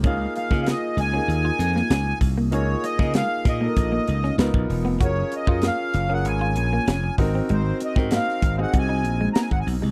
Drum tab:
HH |x-x-x-x-x-x-x-o-|x-x-x-x-x-x-x-o-|x-x-x-x-x-x-x-o-|x-x-x-x-x-x-x-o-|
SD |---oo------oo---|---oo-o----oo---|----o-o-----o---|---ooo------o---|
BD |o--o----------o-|---o--o-o----o--|o--o----------o-|---o--o-o----o--|